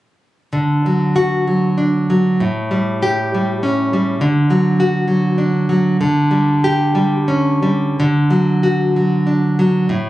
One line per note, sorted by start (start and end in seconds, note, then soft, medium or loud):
0.53 2.38 D3 soft
0.86 1.46 F#3 soft
1.16 1.67 F#4 soft
1.47 2.09 F#3 soft
1.78 2.41 D4 soft
2.10 2.41 F#3 soft
2.40 4.18 A2 soft
2.71 3.33 G3 soft
3.03 3.51 G4 soft
3.34 3.92 G3 soft
3.63 4.22 C#4 soft
3.93 4.23 G3 soft
4.21 5.96 D3 medium
4.50 5.06 F#3 soft
4.80 5.26 F#4 medium
5.08 5.68 F#3 soft
5.38 6.00 D4 soft
5.69 6.00 F#3 soft
6.01 7.94 D3 medium
6.31 6.94 G3 soft
6.64 7.15 G4 medium
6.95 7.61 G3 soft
7.28 7.98 C#4 soft
7.63 7.98 G3 soft
8.00 9.87 D3 medium
8.31 8.95 F#3 soft
8.63 9.15 F#4 soft
8.96 9.58 F#3 soft
9.27 9.90 D4 soft
9.59 9.90 F#3 soft
9.89 10.10 A2 medium